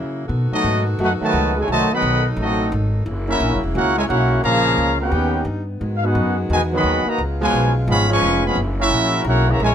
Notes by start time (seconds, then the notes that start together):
Already playing: C#3 F#3 A#3 E4
0.27 B2 D#3 B3 F#4 A4
0.52 F#3 A3 B3 D#4 F#4 A4 D#5, muted upright bass stroke
0.64 G#2
0.99 F#2 A3 D#4 F#4
1.04 D#4 A4 B4 F#5
1.21 D#3 F#3 A3, muted upright bass stroke
1.25 F#4 B4 D#5 A5
1.33 C#2
1.57 G#3 A4 C#5 G#5
1.61 E4
1.67 C2 D#3 F#3 D#4
1.71 A3 F#4 C5 D#5 A5
1.90 D#3 F#3 B3, muted upright bass stroke
1.95 A4 D#5 F#5 B5
2.02 B1
2.36 A1 F#3 A3 D#4
2.42 C4 F#4 A4 D#5
2.72 G#1
3.06 F#1 C#3 F#3 A#3 E4
3.27 A#3 C#4 E4 F#4 A#4 E5
3.40 A#1
3.52 F#1
3.64 E1
3.75 C#2 A#3 C#4 E4 F#4 A#4 C#5 F#5
3.98 G#3 E4 A#4 C#5 G#5
4.09 B1 A#3 C#4 E4 F#4 A#4 C#5 F#5
4.43 A#1 C#3 F3 G#3 A#3 F4 G#4 C#5 F5 A#5
4.78 C#2
5.01 B3 C#4 G4 B4 F#5 G5
5.12 D#2 G3 B3 D#4
5.45 G2
5.80 G#2 D#3 G#3 F#4
5.97 F5
6.03 B3 D#4 F#4 G#4 B4 F#5
6.15 F#2
6.50 E2 B2 D#3 G#3 F#4 B4 G#5
6.54 D#5
6.72 D#3 F#3 B3 D#5
6.77 G#4 F#5 B5
6.84 D#2
7.06 A#3 F#4 B4 A#5, muted upright bass stroke
7.10 D#5
7.18 C#2 C#3 G#3 F4
7.41 B2 F3 G#3 F4 B4 C#5 G#5
7.53 B1
7.88 G#1 F3 G#3 B3 G#4 C#5 F5 B5
8.10 F3 G#3 C#4 B4 F5 G#5 C#6
8.21 F1
8.45 F3 G#3 B3 G#4 C#5 F5 B5
8.55 F#1 C#3 F#3 A#3 E4
8.80 A#3 C#4 E4 F#4 A#4 E5
8.90 A#1
9.24 B1 A#3 C#4 E4 F#4 F#5
9.29 A#4 C#5
9.49 C#3 E3 A#3 F#4 C#5 E5 A#5
9.60 A#1 G#3 C#5
9.64 E4 A#4 G#5